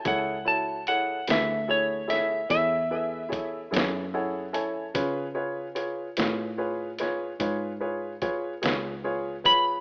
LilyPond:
<<
  \new Staff \with { instrumentName = "Electric slide guitar" } { \time 12/8 \key fis \minor \tempo 4. = 49 fis''8 a''8 fis''8 e''8 cis''8 e''8 e''4 r2 | r1 r4. b''8 | }
  \new Staff \with { instrumentName = "Upright piano" } { \time 12/8 \key fis \minor <e' gis' a' cis''>8 <e' fis' a' cis''>8 <e' gis' a' cis''>8 <e' gis' a' b'>8 <e' gis' a' cis''>8 <e' gis' a' cis''>8 <e' gis' a' cis''>8 <e' gis' a' b'>8 <e' gis' a' cis''>8 <e' gis' a' cis''>8 <e' gis' a' cis'' fis''>8 <e' a' cis'' gis'' a''>8 | <eis' gis' b' cis''>8 <eis' gis' b' cis''>8 <eis' gis' b' cis''>8 <eis' gis' b' cis''>8 <eis' gis' b' cis''>8 <eis' gis' b' cis''>8 <eis' gis' b' cis''>8 <eis' gis' b' cis''>8 <eis' gis' b' cis''>8 <eis' gis' b' cis''>8 <eis' gis' b' cis''>8 <eis' gis' b' cis''>8 | }
  \new Staff \with { instrumentName = "Fingered electric bass" } { \clef bass \time 12/8 \key fis \minor cis,4. d,4. e,4. fis,4. | cis4. a,4. gis,4. cis,4. | }
  \new DrumStaff \with { instrumentName = "Drums" } \drummode { \time 12/8 <hh bd>4 hh8 <hh sn>4 <hh sn>8 <hh bd>4 <hh bd>8 <hh sn>4 hh8 | <hh bd>4 hh8 <hh sn>4 <hh sn>8 <hh bd>4 <hh bd>8 <hh sn>4 <hh bd>8 | }
>>